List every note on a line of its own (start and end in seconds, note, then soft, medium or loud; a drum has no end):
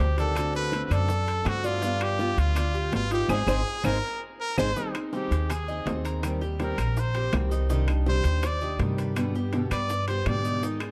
0.00 0.85 D2 medium
0.00 0.17 D#3 soft
0.00 0.17 G3 soft
0.00 0.17 C4 medium
0.00 0.18 G4 medium
0.00 0.16 G4 soft
0.00 0.17 C5 medium
0.00 high timbale medium
0.00 low timbale medium
0.00 maracas soft
0.17 0.35 D#3 medium
0.17 0.36 G3 medium
0.17 0.36 C4 medium
0.17 0.53 D4 medium
0.17 0.35 G4 medium
0.17 0.53 A4 medium
0.17 high bongo soft
0.17 high timbale medium
0.17 maracas medium
0.35 0.71 D3 medium
0.35 0.72 A3 medium
0.35 0.73 C4 medium
0.35 0.73 F#4 medium
0.35 high bongo medium
0.35 high timbale loud
0.35 claves medium
0.35 maracas medium
0.54 0.90 A4 medium
0.54 0.85 B4 medium
0.54 high bongo soft
0.54 maracas soft
0.72 1.08 D3 medium
0.72 1.09 A3 medium
0.72 1.09 C4 medium
0.72 1.09 F#4 medium
0.72 high bongo medium
0.72 high timbale medium
0.72 low timbale medium
0.72 maracas soft
0.85 0.95 B4 medium
0.90 1.42 F#2 medium
0.90 1.50 A4 medium
0.90 1.27 D5 medium
0.90 high bongo soft
0.90 high timbale medium
0.90 claves medium
0.90 maracas medium
1.08 muted steel-string acoustic guitar stroke medium
1.08 high bongo medium
1.08 maracas medium
1.27 1.63 A4 medium
1.27 high bongo soft
1.27 high timbale medium
1.27 maracas soft
1.45 2.32 G2 medium
1.45 1.64 D3 soft
1.45 1.64 A3 soft
1.45 1.64 C4 medium
1.45 1.67 F#4 medium
1.45 1.63 F#4 medium
1.45 high bongo medium
1.45 low bongo medium
1.45 high timbale medium
1.45 low timbale medium
1.45 claves medium
1.45 maracas soft
1.64 1.82 A3 medium
1.64 1.83 C4 medium
1.64 2.04 F4 medium
1.64 1.82 F#4 medium
1.64 1.82 D5 medium
1.64 maracas medium
1.82 2.18 G3 medium
1.82 2.19 B3 medium
1.82 2.18 D4 medium
1.82 2.20 F4 medium
1.82 high bongo medium
1.82 maracas medium
2.01 2.41 G4 medium
2.01 high bongo soft
2.01 high timbale medium
2.01 claves medium
2.01 maracas soft
2.19 2.54 G3 medium
2.19 2.55 B3 medium
2.19 2.55 F4 medium
2.19 high bongo medium
2.19 low timbale medium
2.19 maracas soft
2.37 2.89 D2 medium
2.37 2.94 F4 medium
2.37 high bongo soft
2.37 high timbale medium
2.37 maracas medium
2.55 2.74 D4 medium
2.55 muted steel-string acoustic guitar stroke medium
2.55 high bongo medium
2.55 high timbale medium
2.55 claves medium
2.55 maracas medium
2.74 3.10 G4 medium
2.74 maracas soft
2.92 3.27 G#1 medium
2.92 3.10 G3 soft
2.92 3.11 B3 medium
2.92 3.11 F4 medium
2.92 3.10 F4 medium
2.92 high bongo medium
2.92 low bongo medium
2.92 high timbale medium
2.92 low timbale medium
2.92 maracas soft
3.11 3.30 B3 medium
3.11 3.28 D#4 medium
3.11 3.29 F4 medium
3.11 3.32 G4 medium
3.11 high bongo soft
3.11 high timbale medium
3.11 maracas medium
3.28 3.43 G#1 medium
3.28 3.42 G#3 loud
3.28 3.42 C4 medium
3.28 3.41 D#4 medium
3.28 3.42 D#4 medium
3.28 3.41 G#4 medium
3.28 3.87 G#4 loud
3.28 3.41 C5 medium
3.28 low bongo medium
3.28 high timbale medium
3.28 claves loud
3.28 maracas medium
3.47 3.61 G#1 medium
3.47 3.60 G#3 medium
3.47 3.60 C4 medium
3.47 3.60 D#4 loud
3.47 3.60 D#4 medium
3.47 3.60 G#4 medium
3.47 3.60 C5 medium
3.47 low bongo loud
3.47 high timbale medium
3.47 claves medium
3.47 maracas medium
3.84 3.98 G#1 medium
3.84 3.96 G#3 medium
3.84 3.97 C4 medium
3.84 3.96 D#4 medium
3.84 3.97 D#4 medium
3.84 3.97 G#4 medium
3.84 4.22 A#4 loud
3.84 3.97 C5 medium
3.84 low bongo loud
3.84 high timbale medium
3.84 claves medium
3.84 maracas loud
4.41 4.57 A#4 loud
4.58 4.71 G#1 medium
4.58 4.70 G#3 medium
4.58 4.70 C4 medium
4.58 4.70 D#4 medium
4.58 4.70 G#4 medium
4.58 4.70 C5 medium
4.58 4.93 C5 medium
4.58 low bongo loud
4.58 high timbale medium
4.58 claves medium
4.58 maracas loud
4.76 4.94 D#3 medium
4.76 4.94 G3 medium
4.76 4.95 C4 medium
4.76 5.12 D#4 medium
4.76 4.94 D#4 medium
4.76 4.93 G#4 medium
4.76 high bongo medium
4.76 maracas medium
4.94 5.13 C4 soft
4.94 5.13 D#4 soft
4.94 5.12 G#4 soft
4.94 high bongo soft
4.94 high timbale medium
4.94 claves medium
4.94 maracas soft
5.13 5.31 D#3 medium
5.13 5.31 G3 medium
5.13 5.31 C4 medium
5.13 5.31 D#4 medium
5.13 5.49 G4 medium
5.13 5.54 G4 medium
5.13 5.30 G#4 medium
5.13 high bongo medium
5.13 low timbale medium
5.13 maracas soft
5.31 5.82 D#2 medium
5.31 5.50 C4 soft
5.31 5.49 D#4 soft
5.31 5.49 G#4 soft
5.31 high bongo soft
5.31 high timbale medium
5.31 maracas medium
5.50 5.68 G#4 medium
5.50 5.88 G#4 medium
5.50 muted steel-string acoustic guitar stroke medium
5.50 high bongo medium
5.50 high timbale medium
5.50 claves medium
5.50 maracas medium
5.68 5.87 C4 soft
5.68 5.86 D#4 soft
5.68 5.86 G#4 soft
5.68 6.04 D#5 medium
5.68 maracas soft
5.86 6.72 D#2 medium
5.86 6.22 D#3 medium
5.86 6.23 C4 medium
5.86 6.23 D#4 medium
5.86 6.24 G#4 medium
5.86 high bongo medium
5.86 low bongo medium
5.86 high timbale medium
5.86 low timbale medium
5.86 maracas soft
6.05 6.40 A#4 medium
6.05 high bongo soft
6.05 high timbale medium
6.05 maracas medium
6.23 6.41 D#3 medium
6.23 6.41 G3 medium
6.23 6.42 C4 medium
6.23 6.40 G4 medium
6.23 high bongo medium
6.23 high timbale medium
6.23 claves medium
6.23 maracas medium
6.41 6.59 G3 soft
6.41 6.60 C4 soft
6.41 6.77 G4 medium
6.41 6.59 G4 soft
6.41 high bongo soft
6.41 maracas soft
6.60 6.77 D#3 medium
6.60 6.78 G3 medium
6.60 6.78 C4 medium
6.60 6.77 G4 medium
6.60 7.01 A#4 medium
6.60 high bongo medium
6.60 high timbale medium
6.60 low timbale medium
6.60 maracas soft
6.78 7.29 A#1 medium
6.78 6.96 G3 soft
6.78 6.97 C4 soft
6.78 6.96 G4 soft
6.78 7.14 A#4 medium
6.78 high bongo soft
6.78 high timbale medium
6.78 claves medium
6.78 maracas medium
6.97 7.35 C5 medium
6.97 muted steel-string acoustic guitar stroke medium
6.97 high bongo medium
6.97 maracas medium
7.14 7.32 G3 soft
7.14 7.33 C4 soft
7.14 7.50 G4 medium
7.14 7.32 G4 soft
7.14 high bongo soft
7.14 high timbale medium
7.14 maracas soft
7.33 8.19 C2 loud
7.33 7.69 D#3 medium
7.33 7.69 G3 medium
7.33 7.70 C4 medium
7.33 7.70 G4 medium
7.33 high bongo medium
7.33 low bongo medium
7.33 high timbale medium
7.33 low timbale medium
7.33 claves medium
7.33 maracas soft
7.51 7.68 D#4 medium
7.51 maracas medium
7.69 7.87 C3 medium
7.69 7.87 D#3 medium
7.69 7.88 G3 medium
7.69 7.88 D4 medium
7.69 8.05 D#4 medium
7.69 7.87 G4 medium
7.69 high bongo medium
7.69 maracas medium
7.88 8.07 G3 soft
7.88 8.06 D4 soft
7.88 8.06 G4 soft
7.88 high bongo soft
7.88 high timbale medium
7.88 claves medium
7.88 maracas soft
8.06 8.24 C3 medium
8.06 8.24 D#3 medium
8.06 8.25 G3 medium
8.06 8.24 D4 medium
8.06 8.42 G4 medium
8.06 8.23 G4 medium
8.06 8.48 C5 medium
8.06 high bongo medium
8.06 low timbale medium
8.06 maracas soft
8.24 8.76 D#2 loud
8.24 8.42 G3 soft
8.24 8.43 D4 soft
8.24 8.42 G4 medium
8.24 high bongo soft
8.24 high timbale medium
8.24 maracas medium
8.43 8.61 C5 medium
8.43 8.81 D5 medium
8.43 muted steel-string acoustic guitar stroke medium
8.43 high bongo medium
8.43 high timbale medium
8.43 claves medium
8.43 maracas medium
8.61 8.79 G3 soft
8.61 8.79 D4 soft
8.61 8.79 G4 medium
8.61 8.97 D#5 medium
8.61 maracas soft
8.79 9.65 G2 medium
8.79 9.15 C3 medium
8.79 9.15 D#3 medium
8.79 9.16 G3 medium
8.79 9.16 D4 medium
8.79 9.16 G4 medium
8.79 high bongo medium
8.79 low bongo medium
8.79 high timbale medium
8.79 low timbale medium
8.79 maracas soft
8.98 9.34 B4 medium
8.98 high bongo soft
8.98 high timbale medium
8.98 maracas medium
9.16 9.34 B2 medium
9.16 9.34 D3 medium
9.16 9.34 G3 medium
9.16 9.35 B3 medium
9.16 9.33 G4 medium
9.16 high bongo medium
9.16 high timbale loud
9.16 claves medium
9.16 maracas medium
9.35 9.53 G3 soft
9.35 9.53 B3 soft
9.35 9.52 G4 medium
9.35 9.71 G4 medium
9.35 high bongo soft
9.35 maracas soft
9.53 9.71 B2 medium
9.53 9.71 D3 medium
9.53 9.71 G3 medium
9.53 9.71 B3 medium
9.53 9.70 G4 medium
9.53 high bongo medium
9.53 high timbale medium
9.53 low timbale medium
9.53 maracas soft
9.71 10.22 G2 medium
9.71 9.89 G3 soft
9.71 9.89 B3 soft
9.71 9.89 G4 soft
9.71 10.07 B4 medium
9.71 10.06 D5 medium
9.71 high bongo soft
9.71 high timbale medium
9.71 claves medium
9.71 maracas medium
9.90 muted steel-string acoustic guitar stroke medium
9.90 high bongo medium
9.90 maracas medium
10.08 10.26 G3 soft
10.08 10.26 B3 soft
10.08 10.44 G4 medium
10.08 10.26 G4 soft
10.08 10.30 C5 medium
10.08 high bongo soft
10.08 high timbale medium
10.08 maracas soft
10.26 10.91 G#2 medium
10.26 10.62 B2 medium
10.26 10.62 D3 medium
10.26 10.63 G3 medium
10.26 10.63 B3 medium
10.26 10.63 G4 medium
10.26 10.64 D5 loud
10.26 high bongo medium
10.26 low bongo medium
10.26 high timbale loud
10.26 low timbale medium
10.26 claves medium
10.26 maracas soft
10.45 10.62 D#4 medium
10.45 maracas medium
10.62 10.80 D#3 medium
10.62 10.81 G#3 medium
10.62 10.91 D#4 medium
10.62 10.81 D#4 medium
10.62 10.79 G#4 medium
10.62 high bongo medium
10.62 maracas medium
10.80 10.91 G#3 soft
10.80 10.91 D#4 soft
10.80 10.91 G#4 soft
10.80 high bongo soft
10.80 high timbale medium
10.80 claves medium
10.80 maracas soft